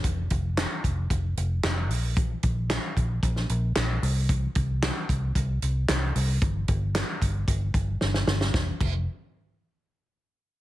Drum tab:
CC |----------------|----------------|----------------|----------------|
HH |x-x-x-x-x-x-x-o-|x-x-x-x-x-x-x-o-|x-x-x-x-x-x-x-o-|x-x-x-x-x-x-----|
CP |----x-------x---|----x-------x---|----x-------x---|----x-----------|
SD |----o-------o---|----o----o--o---|----o-------o---|----o-------oooo|
BD |o-o---o-o-------|o-o---o-o-------|o-o---o-o-------|o-o---o-o-o-----|

CC |--x-------------|
HH |----------------|
CP |----------------|
SD |o---------------|
BD |o-o-------------|